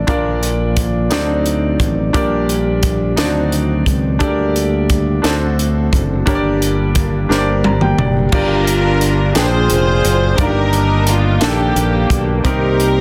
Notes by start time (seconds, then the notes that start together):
Already playing: D3 D4 D5
0.07 A#1 A#2 F3 A#3 D4 F4 A#4 D5, kick, closed hi-hat
0.43 closed hi-hat
0.77 kick, closed hi-hat
1.10 D2 D3 F#3 C4 D#4 F#4 C5 D5, snare, closed hi-hat
1.14 D#4
1.46 closed hi-hat
1.80 A1, kick, closed hi-hat
2.13 A#1 A#2 D3 G3 A#3 D4 G4 A#4 D5, kick, closed hi-hat
2.49 closed hi-hat
2.83 kick, closed hi-hat
3.16 D2 D#3 F#3 C4 D4 D#4 F4 C5 D5, snare, closed hi-hat
3.24 F#4
3.52 closed hi-hat
3.86 C#2, kick, closed hi-hat
4.19 D2 D3 G3 A#3 D4 G4 A4 D5, kick, closed hi-hat
4.23 G3 A#3 A#4
4.56 closed hi-hat
4.90 kick, closed hi-hat
5.22 D2 D3 F#3 A3 C4 D4 D#4 F#4 A4 C5, snare, closed hi-hat
5.26 A3 C4 F#4
5.59 closed hi-hat
5.93 F#1, kick, closed hi-hat
6.26 G2 G3 A#3 D4 G4 A#4 C#5, kick, closed hi-hat
6.35 D5
6.62 closed hi-hat
6.95 kick, closed hi-hat
7.29 G1 D4 G4 A#4 C5, snare
7.38 D5
7.64 A#5, high tom
7.81 G5, mid tom
7.98 F#1 D5, mid tom
8.32 G1 G2 D4 F4 G4 A#4 D5 F5 A#5, kick, crash
8.67 closed hi-hat
9.01 closed hi-hat
9.35 A#1 A#2 D4 F4 G#4 B4 C5 G5 C6, snare, closed hi-hat
9.44 C5
9.70 F1, closed hi-hat
10.05 F#1, closed hi-hat
10.38 G1 G2 D#3 A#3 D4 D#4 F4 A#4 D5 G5 D6, kick, closed hi-hat
10.47 G4
10.73 closed hi-hat
11.07 F4, closed hi-hat
11.41 A#1 D#3 A#3 D4 G4 A4, snare, closed hi-hat
11.76 A#1, closed hi-hat
12.10 B1, kick, closed hi-hat
12.44 C2 C3 C4 D#4 G4 A#4 C6, kick, closed hi-hat
12.80 closed hi-hat